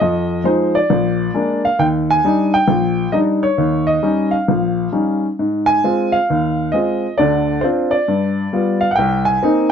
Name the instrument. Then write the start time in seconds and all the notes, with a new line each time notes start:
upright piano
0.00 F2 D#5
0.44 F3 G#3 D#4 C5
0.75 D5
0.90 A#1
1.34 G#3 A#3 D4
1.65 F5
1.79 D#2 G5
2.10 G#5
2.24 G3 D4 D#4
2.54 G5
2.68 A#1
3.12 G3 D4 D#4 D#5
3.43 C#5
3.58 D#2
3.87 D#5
4.02 G3 C#4 D#4
4.31 F5
4.48 A#1
4.92 G3 C#4 D#4
5.39 G#2
5.66 G#5
5.84 G#3 C4 F4
6.12 F5
6.30 D#2
6.72 G#3 C4 F4 D#5
7.18 D2 D3 D5
7.61 C4 D4 F4 C5
7.91 D5
8.08 G2
8.53 G3 B3 F4
8.81 F5
8.91 F#5
8.96 C2 G5
9.25 G#5
9.43 A#3 C4 D#4